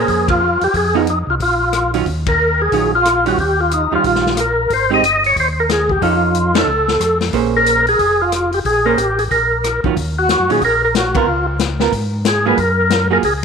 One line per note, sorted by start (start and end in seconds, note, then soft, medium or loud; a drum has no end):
0.00 0.39 A#3 soft
0.00 0.39 C#4 medium
0.00 0.28 G#4 medium
0.00 0.39 G#4 medium
0.00 0.39 C5 medium
0.08 0.58 F2 medium
0.08 kick soft
0.08 open hi-hat soft
0.28 0.63 F4 medium
0.28 kick medium
0.28 ride medium
0.61 0.68 F2 soft
0.61 0.76 G4 medium
0.61 open hi-hat soft
0.73 1.24 F2 medium
0.73 0.97 G#4 medium
0.73 kick soft
0.73 open hi-hat soft
0.94 1.06 F3 medium
0.94 1.06 B3 medium
0.94 1.06 D#4 medium
0.94 1.02 F4 medium
0.94 1.06 G#4 medium
1.07 1.19 D#4 medium
1.07 closed hi-hat soft
1.27 1.39 C2 medium
1.27 1.35 F4 medium
1.40 2.03 A#1 medium
1.40 1.91 F4 medium
1.40 kick soft
1.40 open hi-hat soft
1.73 cross-stick medium
1.73 closed hi-hat soft
1.94 2.05 D#3 medium
1.94 2.05 F#3 medium
1.94 2.06 C#4 medium
1.94 2.06 F4 medium
1.94 open hi-hat soft
2.05 2.69 D#2 medium
2.05 kick soft
2.05 open hi-hat soft
2.26 2.62 A#4 medium
2.26 kick medium
2.26 ride medium
2.62 2.92 G#4 medium
2.72 3.35 A#1 medium
2.72 2.91 D#3 medium
2.72 2.91 F#3 medium
2.72 2.91 C#4 medium
2.72 2.92 F4 medium
2.72 kick soft
2.72 open hi-hat soft
2.95 3.25 F4 medium
3.05 cross-stick medium
3.05 closed hi-hat soft
3.26 3.37 D#3 medium
3.26 3.37 G3 medium
3.26 3.37 C#4 medium
3.26 3.38 F4 medium
3.26 3.39 F#4 medium
3.26 open hi-hat soft
3.38 3.88 D#2 medium
3.38 3.60 G4 medium
3.38 kick soft
3.38 open hi-hat soft
3.61 3.73 F4 medium
3.71 3.94 D#4 medium
3.71 closed hi-hat soft
3.91 3.98 D#2 soft
3.91 4.35 D#3 soft
3.91 4.35 G3 soft
3.91 4.35 C#4 soft
3.91 4.35 F4 medium
3.91 4.05 F4 medium
4.04 4.67 A#1 medium
4.04 4.39 F4 medium
4.04 kick soft
4.04 open hi-hat soft
4.15 snare soft
4.26 snare soft
4.37 4.73 A#4 medium
4.37 cross-stick medium
4.37 closed hi-hat soft
4.70 5.01 G#1 medium
4.70 4.91 C5 medium
4.70 kick soft
4.70 open hi-hat soft
4.90 5.02 G#3 medium
4.90 5.02 C4 medium
4.90 5.02 D#4 medium
4.90 5.02 G4 medium
4.90 5.04 D#5 medium
5.02 5.33 G1 medium
5.02 5.23 D#5 medium
5.02 closed hi-hat soft
5.24 5.37 C#5 medium
5.24 open hi-hat soft
5.36 5.99 D#2 medium
5.36 5.48 C5 medium
5.36 kick soft
5.36 open hi-hat soft
5.60 5.71 A#4 medium
5.69 5.91 G#4 medium
5.69 cross-stick medium
5.69 snare soft
5.69 closed hi-hat soft
5.89 6.02 G4 medium
5.89 kick soft
6.02 6.64 F2 medium
6.02 6.51 F3 soft
6.02 6.51 C#4 medium
6.02 6.52 D#4 soft
6.02 6.57 F4 medium
6.02 6.52 A4 medium
6.02 kick soft
6.02 open hi-hat soft
6.35 closed hi-hat soft
6.54 6.66 F3 medium
6.54 6.66 C#4 medium
6.54 6.66 D#4 medium
6.54 6.67 A4 medium
6.54 7.18 A4 medium
6.54 snare medium
6.54 ride medium
6.66 6.97 C#2 medium
6.88 snare soft
7.00 7.31 F2 medium
7.00 cross-stick medium
7.00 closed hi-hat soft
7.21 snare soft
7.21 open hi-hat soft
7.33 7.95 A#1 medium
7.33 7.82 A#3 medium
7.33 7.83 C#4 medium
7.33 7.83 G#4 medium
7.33 7.83 C5 medium
7.33 kick soft
7.33 open hi-hat soft
7.57 7.86 A#4 medium
7.66 closed hi-hat soft
7.87 8.21 G#4 loud
7.87 open hi-hat soft
7.99 8.61 F1 medium
7.99 kick soft
7.99 open hi-hat soft
8.22 8.51 F4 medium
8.32 cross-stick medium
8.32 closed hi-hat medium
8.52 8.59 G4 medium
8.52 open hi-hat soft
8.65 8.95 A#1 medium
8.65 8.86 G#4 medium
8.65 kick soft
8.65 open hi-hat soft
8.85 8.96 A#3 medium
8.85 8.97 C#4 medium
8.85 8.97 G#4 medium
8.85 8.98 A#4 medium
8.85 8.97 C5 medium
8.97 9.28 A1 medium
8.97 9.19 G4 medium
8.97 closed hi-hat soft
9.19 9.24 G#4 medium
9.19 open hi-hat soft
9.30 9.80 A#1 medium
9.30 9.80 A#4 medium
9.30 kick soft
9.30 open hi-hat soft
9.64 cross-stick medium
9.64 closed hi-hat medium
9.84 9.90 A#1 soft
9.84 9.95 D#3 medium
9.84 9.95 F#3 medium
9.84 9.95 C#4 medium
9.84 9.96 F4 medium
9.84 kick medium
9.96 10.37 D#2 medium
9.96 kick soft
9.96 open hi-hat soft
10.19 10.51 F#4 medium
10.29 snare medium
10.29 closed hi-hat soft
10.39 10.50 F#2 soft
10.49 10.60 A#2 medium
10.49 10.60 D#3 soft
10.49 10.60 F#3 medium
10.49 10.61 C#4 medium
10.49 10.61 F4 medium
10.49 10.63 G#4 medium
10.49 open hi-hat soft
10.61 11.24 A#1 medium
10.61 10.82 A#4 medium
10.61 kick soft
10.61 open hi-hat soft
10.85 10.95 A#4 medium
10.95 11.17 F#4 medium
10.95 snare medium
10.95 closed hi-hat medium
11.15 11.26 B3 medium
11.15 11.26 F4 medium
11.15 11.46 F4 medium
11.15 11.26 A#4 medium
11.15 kick medium
11.15 ride medium
11.27 11.89 C#2 medium
11.59 snare medium
11.59 closed hi-hat medium
11.80 11.91 B3 medium
11.80 11.91 F4 medium
11.80 11.92 A#4 medium
11.80 snare soft
11.92 12.54 G#2 medium
11.92 kick soft
11.92 open hi-hat soft
12.25 12.45 G#4 medium
12.25 snare medium
12.25 closed hi-hat medium
12.46 12.57 F#3 medium
12.46 12.57 A#3 medium
12.46 12.57 F4 medium
12.46 12.57 G#4 medium
12.46 12.59 B4 medium
12.57 13.19 F#2 loud
12.57 13.08 A#4 medium
12.57 kick soft
12.57 open hi-hat soft
12.90 snare medium
12.90 closed hi-hat medium
13.10 13.22 F#3 medium
13.10 13.22 A#3 medium
13.10 13.22 F4 medium
13.10 13.22 G#4 medium
13.10 13.18 A#4 medium
13.23 13.45 C#2 medium
13.23 13.34 G#4 medium
13.23 kick soft
13.23 open hi-hat soft